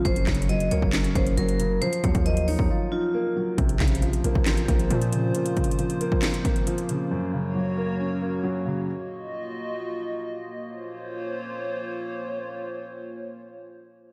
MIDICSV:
0, 0, Header, 1, 6, 480
1, 0, Start_track
1, 0, Key_signature, -5, "minor"
1, 0, Tempo, 441176
1, 57, Time_signature, 4, 2, 24, 8
1, 15367, End_track
2, 0, Start_track
2, 0, Title_t, "Vibraphone"
2, 0, Program_c, 0, 11
2, 55, Note_on_c, 0, 72, 100
2, 260, Note_off_c, 0, 72, 0
2, 296, Note_on_c, 0, 73, 77
2, 501, Note_off_c, 0, 73, 0
2, 535, Note_on_c, 0, 75, 88
2, 741, Note_off_c, 0, 75, 0
2, 776, Note_on_c, 0, 73, 78
2, 1228, Note_off_c, 0, 73, 0
2, 1256, Note_on_c, 0, 72, 76
2, 1461, Note_off_c, 0, 72, 0
2, 1497, Note_on_c, 0, 70, 89
2, 1948, Note_off_c, 0, 70, 0
2, 1976, Note_on_c, 0, 72, 109
2, 2181, Note_off_c, 0, 72, 0
2, 2216, Note_on_c, 0, 73, 73
2, 2421, Note_off_c, 0, 73, 0
2, 2456, Note_on_c, 0, 75, 90
2, 2661, Note_off_c, 0, 75, 0
2, 2696, Note_on_c, 0, 73, 79
2, 3148, Note_off_c, 0, 73, 0
2, 3176, Note_on_c, 0, 65, 78
2, 3853, Note_off_c, 0, 65, 0
2, 15367, End_track
3, 0, Start_track
3, 0, Title_t, "Analog synth pad"
3, 0, Program_c, 1, 89
3, 3897, Note_on_c, 1, 58, 83
3, 3897, Note_on_c, 1, 65, 81
3, 3897, Note_on_c, 1, 72, 95
3, 7698, Note_off_c, 1, 65, 0
3, 7698, Note_off_c, 1, 72, 0
3, 7737, Note_on_c, 1, 66, 76
3, 7737, Note_on_c, 1, 73, 90
3, 9638, Note_off_c, 1, 66, 0
3, 9638, Note_off_c, 1, 73, 0
3, 9657, Note_on_c, 1, 65, 77
3, 9657, Note_on_c, 1, 66, 75
3, 9657, Note_on_c, 1, 75, 93
3, 11534, Note_off_c, 1, 58, 0
3, 11558, Note_off_c, 1, 65, 0
3, 11558, Note_off_c, 1, 66, 0
3, 11558, Note_off_c, 1, 75, 0
3, 11577, Note_on_c, 1, 58, 83
3, 11577, Note_on_c, 1, 65, 77
3, 11577, Note_on_c, 1, 72, 79
3, 11577, Note_on_c, 1, 73, 92
3, 15367, Note_off_c, 1, 58, 0
3, 15367, Note_off_c, 1, 65, 0
3, 15367, Note_off_c, 1, 72, 0
3, 15367, Note_off_c, 1, 73, 0
3, 15367, End_track
4, 0, Start_track
4, 0, Title_t, "Grand piano"
4, 0, Program_c, 2, 0
4, 0, Control_c, 2, 64, 127
4, 57, Note_on_c, 2, 42, 91
4, 73, Control_c, 2, 64, 0
4, 258, Control_c, 2, 64, 127
4, 297, Note_on_c, 2, 49, 77
4, 536, Note_on_c, 2, 54, 84
4, 776, Note_on_c, 2, 58, 99
4, 1017, Note_on_c, 2, 61, 80
4, 1242, Note_off_c, 2, 58, 0
4, 1257, Note_off_c, 2, 42, 0
4, 1258, Note_on_c, 2, 58, 87
4, 1481, Note_off_c, 2, 54, 0
4, 1497, Note_off_c, 2, 49, 0
4, 1497, Note_on_c, 2, 54, 95
4, 1737, Note_on_c, 2, 49, 83
4, 1977, Note_off_c, 2, 49, 0
4, 1977, Note_off_c, 2, 54, 0
4, 1977, Note_off_c, 2, 61, 0
4, 1977, Note_on_c, 2, 53, 93
4, 1978, Note_off_c, 2, 58, 0
4, 1991, Control_c, 2, 64, 0
4, 2169, Control_c, 2, 64, 127
4, 2217, Note_on_c, 2, 54, 72
4, 2457, Note_on_c, 2, 58, 78
4, 2698, Note_on_c, 2, 63, 96
4, 2938, Note_on_c, 2, 65, 84
4, 3160, Note_off_c, 2, 63, 0
4, 3176, Note_on_c, 2, 63, 80
4, 3177, Note_off_c, 2, 53, 0
4, 3400, Note_off_c, 2, 58, 0
4, 3417, Note_off_c, 2, 54, 0
4, 3417, Note_on_c, 2, 58, 100
4, 3659, Note_on_c, 2, 54, 71
4, 3896, Note_off_c, 2, 63, 0
4, 3897, Note_off_c, 2, 58, 0
4, 3897, Note_off_c, 2, 65, 0
4, 3897, Note_on_c, 2, 48, 84
4, 3898, Note_off_c, 2, 54, 0
4, 3913, Control_c, 2, 64, 0
4, 4129, Control_c, 2, 64, 127
4, 4135, Note_on_c, 2, 49, 76
4, 4376, Note_on_c, 2, 53, 83
4, 4617, Note_on_c, 2, 58, 93
4, 4857, Note_on_c, 2, 60, 87
4, 5081, Note_off_c, 2, 58, 0
4, 5097, Note_off_c, 2, 48, 0
4, 5097, Note_on_c, 2, 58, 83
4, 5320, Note_off_c, 2, 53, 0
4, 5336, Note_off_c, 2, 49, 0
4, 5336, Note_on_c, 2, 53, 92
4, 5577, Note_on_c, 2, 49, 76
4, 5817, Note_on_c, 2, 46, 88
4, 6042, Note_off_c, 2, 49, 0
4, 6057, Note_off_c, 2, 60, 0
4, 6058, Note_on_c, 2, 49, 78
4, 6281, Note_off_c, 2, 53, 0
4, 6297, Note_off_c, 2, 58, 0
4, 6297, Note_on_c, 2, 53, 78
4, 6537, Note_on_c, 2, 58, 101
4, 6778, Note_on_c, 2, 60, 78
4, 7001, Note_off_c, 2, 58, 0
4, 7017, Note_off_c, 2, 46, 0
4, 7017, Note_on_c, 2, 58, 78
4, 7240, Note_off_c, 2, 53, 0
4, 7256, Note_on_c, 2, 53, 91
4, 7257, Note_off_c, 2, 49, 0
4, 7498, Note_on_c, 2, 49, 77
4, 7737, Note_off_c, 2, 49, 0
4, 7737, Note_off_c, 2, 53, 0
4, 7737, Note_off_c, 2, 58, 0
4, 7737, Note_off_c, 2, 60, 0
4, 7738, Note_on_c, 2, 42, 89
4, 7753, Control_c, 2, 64, 0
4, 7954, Control_c, 2, 64, 127
4, 7978, Note_on_c, 2, 49, 75
4, 8216, Note_on_c, 2, 54, 82
4, 8456, Note_on_c, 2, 58, 100
4, 8698, Note_on_c, 2, 61, 72
4, 8922, Note_off_c, 2, 58, 0
4, 8937, Note_off_c, 2, 42, 0
4, 8938, Note_on_c, 2, 58, 84
4, 9160, Note_off_c, 2, 54, 0
4, 9177, Note_off_c, 2, 49, 0
4, 9177, Note_on_c, 2, 54, 96
4, 9417, Note_on_c, 2, 49, 78
4, 9657, Note_off_c, 2, 49, 0
4, 9657, Note_off_c, 2, 54, 0
4, 9657, Note_off_c, 2, 58, 0
4, 9657, Note_off_c, 2, 61, 0
4, 9672, Control_c, 2, 64, 0
4, 15367, End_track
5, 0, Start_track
5, 0, Title_t, "808-style bass"
5, 0, Program_c, 3, 38
5, 57, Note_on_c, 3, 30, 108
5, 287, Note_off_c, 3, 30, 0
5, 297, Note_on_c, 3, 30, 107
5, 758, Note_off_c, 3, 30, 0
5, 777, Note_on_c, 3, 37, 106
5, 890, Note_off_c, 3, 37, 0
5, 896, Note_on_c, 3, 30, 102
5, 1242, Note_off_c, 3, 30, 0
5, 1256, Note_on_c, 3, 30, 105
5, 1487, Note_off_c, 3, 30, 0
5, 1497, Note_on_c, 3, 30, 109
5, 1958, Note_off_c, 3, 30, 0
5, 2218, Note_on_c, 3, 39, 107
5, 2332, Note_off_c, 3, 39, 0
5, 2337, Note_on_c, 3, 39, 101
5, 2797, Note_off_c, 3, 39, 0
5, 2817, Note_on_c, 3, 39, 103
5, 2932, Note_off_c, 3, 39, 0
5, 3897, Note_on_c, 3, 34, 108
5, 4127, Note_off_c, 3, 34, 0
5, 4138, Note_on_c, 3, 34, 110
5, 4598, Note_off_c, 3, 34, 0
5, 4617, Note_on_c, 3, 34, 100
5, 4732, Note_off_c, 3, 34, 0
5, 4737, Note_on_c, 3, 33, 103
5, 5082, Note_off_c, 3, 33, 0
5, 5096, Note_on_c, 3, 34, 103
5, 5327, Note_off_c, 3, 34, 0
5, 5337, Note_on_c, 3, 46, 102
5, 5798, Note_off_c, 3, 46, 0
5, 15367, End_track
6, 0, Start_track
6, 0, Title_t, "Drums"
6, 56, Note_on_c, 9, 36, 120
6, 56, Note_on_c, 9, 42, 76
6, 165, Note_off_c, 9, 36, 0
6, 165, Note_off_c, 9, 42, 0
6, 176, Note_on_c, 9, 42, 63
6, 285, Note_off_c, 9, 42, 0
6, 290, Note_on_c, 9, 39, 70
6, 296, Note_on_c, 9, 38, 88
6, 296, Note_on_c, 9, 42, 48
6, 297, Note_on_c, 9, 36, 96
6, 376, Note_off_c, 9, 42, 0
6, 376, Note_on_c, 9, 42, 66
6, 399, Note_off_c, 9, 39, 0
6, 405, Note_off_c, 9, 38, 0
6, 406, Note_off_c, 9, 36, 0
6, 456, Note_off_c, 9, 42, 0
6, 456, Note_on_c, 9, 42, 76
6, 537, Note_off_c, 9, 42, 0
6, 537, Note_on_c, 9, 42, 61
6, 645, Note_off_c, 9, 42, 0
6, 656, Note_on_c, 9, 42, 57
6, 765, Note_off_c, 9, 42, 0
6, 776, Note_on_c, 9, 42, 78
6, 885, Note_off_c, 9, 42, 0
6, 896, Note_on_c, 9, 36, 91
6, 1005, Note_off_c, 9, 36, 0
6, 1010, Note_on_c, 9, 39, 101
6, 1015, Note_on_c, 9, 38, 122
6, 1016, Note_on_c, 9, 42, 86
6, 1119, Note_off_c, 9, 39, 0
6, 1124, Note_off_c, 9, 38, 0
6, 1125, Note_off_c, 9, 42, 0
6, 1136, Note_on_c, 9, 42, 56
6, 1245, Note_off_c, 9, 42, 0
6, 1256, Note_on_c, 9, 36, 99
6, 1256, Note_on_c, 9, 42, 75
6, 1365, Note_off_c, 9, 36, 0
6, 1365, Note_off_c, 9, 42, 0
6, 1377, Note_on_c, 9, 42, 55
6, 1485, Note_off_c, 9, 42, 0
6, 1496, Note_on_c, 9, 42, 77
6, 1605, Note_off_c, 9, 42, 0
6, 1616, Note_on_c, 9, 42, 55
6, 1725, Note_off_c, 9, 42, 0
6, 1736, Note_on_c, 9, 42, 87
6, 1845, Note_off_c, 9, 42, 0
6, 1977, Note_on_c, 9, 42, 76
6, 2085, Note_off_c, 9, 42, 0
6, 2097, Note_on_c, 9, 42, 64
6, 2206, Note_off_c, 9, 42, 0
6, 2217, Note_on_c, 9, 42, 78
6, 2218, Note_on_c, 9, 36, 96
6, 2325, Note_off_c, 9, 42, 0
6, 2326, Note_off_c, 9, 36, 0
6, 2336, Note_on_c, 9, 42, 53
6, 2337, Note_on_c, 9, 36, 97
6, 2445, Note_off_c, 9, 42, 0
6, 2446, Note_off_c, 9, 36, 0
6, 2457, Note_on_c, 9, 42, 60
6, 2566, Note_off_c, 9, 42, 0
6, 2577, Note_on_c, 9, 42, 57
6, 2686, Note_off_c, 9, 42, 0
6, 2697, Note_on_c, 9, 46, 78
6, 2806, Note_off_c, 9, 46, 0
6, 2817, Note_on_c, 9, 36, 92
6, 2926, Note_off_c, 9, 36, 0
6, 3897, Note_on_c, 9, 36, 118
6, 3897, Note_on_c, 9, 42, 75
6, 4006, Note_off_c, 9, 36, 0
6, 4006, Note_off_c, 9, 42, 0
6, 4017, Note_on_c, 9, 42, 63
6, 4126, Note_off_c, 9, 42, 0
6, 4132, Note_on_c, 9, 39, 71
6, 4137, Note_on_c, 9, 38, 89
6, 4137, Note_on_c, 9, 42, 49
6, 4138, Note_on_c, 9, 36, 96
6, 4217, Note_off_c, 9, 42, 0
6, 4217, Note_on_c, 9, 42, 64
6, 4240, Note_off_c, 9, 39, 0
6, 4246, Note_off_c, 9, 36, 0
6, 4246, Note_off_c, 9, 38, 0
6, 4296, Note_off_c, 9, 42, 0
6, 4296, Note_on_c, 9, 42, 77
6, 4376, Note_off_c, 9, 42, 0
6, 4376, Note_on_c, 9, 42, 62
6, 4485, Note_off_c, 9, 42, 0
6, 4497, Note_on_c, 9, 42, 56
6, 4606, Note_off_c, 9, 42, 0
6, 4617, Note_on_c, 9, 42, 78
6, 4726, Note_off_c, 9, 42, 0
6, 4737, Note_on_c, 9, 36, 90
6, 4846, Note_off_c, 9, 36, 0
6, 4851, Note_on_c, 9, 39, 97
6, 4856, Note_on_c, 9, 38, 124
6, 4857, Note_on_c, 9, 42, 84
6, 4959, Note_off_c, 9, 39, 0
6, 4965, Note_off_c, 9, 38, 0
6, 4965, Note_off_c, 9, 42, 0
6, 4977, Note_on_c, 9, 42, 56
6, 5085, Note_off_c, 9, 42, 0
6, 5096, Note_on_c, 9, 36, 98
6, 5097, Note_on_c, 9, 42, 76
6, 5205, Note_off_c, 9, 36, 0
6, 5206, Note_off_c, 9, 42, 0
6, 5217, Note_on_c, 9, 42, 54
6, 5326, Note_off_c, 9, 42, 0
6, 5337, Note_on_c, 9, 42, 79
6, 5445, Note_off_c, 9, 42, 0
6, 5457, Note_on_c, 9, 42, 53
6, 5566, Note_off_c, 9, 42, 0
6, 5576, Note_on_c, 9, 42, 82
6, 5685, Note_off_c, 9, 42, 0
6, 5816, Note_on_c, 9, 42, 74
6, 5925, Note_off_c, 9, 42, 0
6, 5936, Note_on_c, 9, 42, 61
6, 6045, Note_off_c, 9, 42, 0
6, 6056, Note_on_c, 9, 42, 47
6, 6057, Note_on_c, 9, 36, 96
6, 6136, Note_off_c, 9, 42, 0
6, 6136, Note_on_c, 9, 42, 66
6, 6166, Note_off_c, 9, 36, 0
6, 6217, Note_off_c, 9, 42, 0
6, 6217, Note_on_c, 9, 42, 74
6, 6296, Note_off_c, 9, 42, 0
6, 6296, Note_on_c, 9, 42, 59
6, 6405, Note_off_c, 9, 42, 0
6, 6417, Note_on_c, 9, 42, 56
6, 6525, Note_off_c, 9, 42, 0
6, 6537, Note_on_c, 9, 42, 77
6, 6645, Note_off_c, 9, 42, 0
6, 6656, Note_on_c, 9, 36, 88
6, 6765, Note_off_c, 9, 36, 0
6, 6770, Note_on_c, 9, 39, 96
6, 6776, Note_on_c, 9, 38, 123
6, 6776, Note_on_c, 9, 42, 84
6, 6879, Note_off_c, 9, 39, 0
6, 6884, Note_off_c, 9, 38, 0
6, 6885, Note_off_c, 9, 42, 0
6, 6897, Note_on_c, 9, 42, 57
6, 7005, Note_off_c, 9, 42, 0
6, 7016, Note_on_c, 9, 36, 95
6, 7016, Note_on_c, 9, 42, 75
6, 7125, Note_off_c, 9, 36, 0
6, 7125, Note_off_c, 9, 42, 0
6, 7136, Note_on_c, 9, 42, 52
6, 7245, Note_off_c, 9, 42, 0
6, 7256, Note_on_c, 9, 42, 77
6, 7365, Note_off_c, 9, 42, 0
6, 7377, Note_on_c, 9, 42, 52
6, 7485, Note_off_c, 9, 42, 0
6, 7497, Note_on_c, 9, 42, 82
6, 7606, Note_off_c, 9, 42, 0
6, 15367, End_track
0, 0, End_of_file